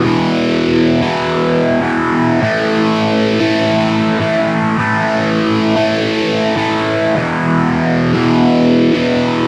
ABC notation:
X:1
M:4/4
L:1/8
Q:"Swing" 1/4=101
K:A
V:1 name="Overdriven electric guitar" clef=bass
[E,,B,,E,]3 [E,,B,,E,]3 [E,,B,,E,]2 | [A,,E,A,]3 [A,,E,A,]3 [A,,E,A,]2 | [A,,E,A,]3 [A,,E,A,]3 [A,,E,A,]2 | [E,,B,,E,]3 [E,,B,,E,]3 [E,,B,,E,]2 |]